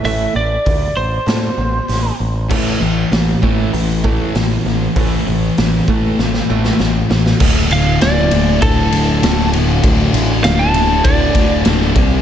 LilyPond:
<<
  \new Staff \with { instrumentName = "Lead electric guitar" } { \time 4/4 \key a \phrygian \tempo 4 = 98 e''8 d''4 c''2 r8 | r1 | r1 | r8 f''8 d''4 a'4. r8 |
r4 f''16 a''8. d''4 r4 | }
  \new Staff \with { instrumentName = "Steel-string acoustic guitar" } { \clef bass \time 4/4 \key a \phrygian <a, e a>8 <a, e>8 <a, e>8 <a, e>8 <a, e>8 <a, e>8 <a, e>8 <a, e>8 | <a, e a>8 <a, e>8 <a, e>8 <a, e a>8 <a, e>8 <a, e a>8 <a, e>8 <a, e>8 | <a, e a>8 <a, e>8 <a, e>8 <a, e a>8 <a, e>8 <a, e a>8 <a, e>8 <a, e>8 | r1 |
r1 | }
  \new Staff \with { instrumentName = "Distorted electric guitar" } { \clef bass \time 4/4 \key a \phrygian r1 | <a, e a>8 <a, e>8 <a, e>8 <a, e a>8 <a, e>8 <a, e a>8 <a, e>8 <a, e>8 | <a, e a>8 <a, e>8 <a, e>8 <a, e a>8 <a, e>8 <a, e a>8 <a, e>8 <a, e>8 | <d, a, d>8 <d, a, d>8 <d, a, d>8 <d, a, d>8 <d, a, d>8 <d, a, d>8 <d, a, d>8 <d, a, d>8 |
<d, a, d>8 <d, a, d>8 <d, a, d>8 <d, a, d>8 <d, a, d>8 <d, a, d>8 <d, a, d>8 <c g c'>8 | }
  \new Staff \with { instrumentName = "Picked electric bass" } { \clef bass \time 4/4 \key a \phrygian a,,8 a,,8 d,8 a,,8 a,8 a,,8 a,,8 a,,8 | a,,8 a,,8 a,,8 a,,8 a,,4 a,,8 a,,8 | a,,8 a,,8 a,,8 a,,8 a,,8 a,,8 a,,8 a,,8 | d,,4 d,,8 d,,8 d,,8 d,,8 d,,4 |
d,,8 a,,8 d,,4 d,,4 d,,8 c,8 | }
  \new DrumStaff \with { instrumentName = "Drums" } \drummode { \time 4/4 hho4 <hho bd>4 <hho sn>4 <hho sn>4 | <cymc bd>4 <hho sn>8 bd8 hho8 bd8 <hho sn>8 sn8 | <hho bd>4 <hho sn>8 bd8 sn16 sn8 sn16 sn8 sn16 sn16 | <cymc bd>8 cymr8 <cymr sn>8 cymr8 <bd cymr>8 cymr8 <cymr sn>16 sn16 cymr8 |
<bd cymr>8 cymr8 <cymr sn>8 cymr8 <bd cymr>8 <bd cymr>8 <cymr sn>16 sn16 <bd cymr>8 | }
>>